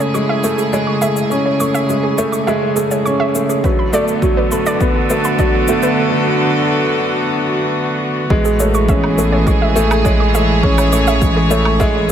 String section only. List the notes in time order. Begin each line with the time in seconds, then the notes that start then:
Already playing: C#3 E4 G#4
3.64 D3
3.84 B3
4.40 F#4
5.11 A4
8.31 E3
8.95 G#4
10.31 C#5